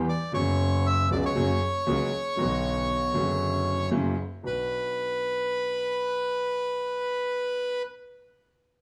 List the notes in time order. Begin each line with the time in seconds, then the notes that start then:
0.09 D5
0.32 F#1 F#2 C#3 F#3 B3 C#5
0.36 F#4
0.86 E5
1.10 C#2 C#3 F#3 B3 F#4 D5
1.25 C#5
1.36 F#1 F#2 C#3 F#3 A#3 F#4
1.86 C#2 C#3 F#3 A#3 F#4
2.36 B1 B2 D3 F#3 B3 F#4
3.13 F#1 F#2 D3 F#3 B3 F#4
3.91 F#1 F#2 C#3 F#3 A#3 E4
4.43 B1 B3 D4 F#4 B4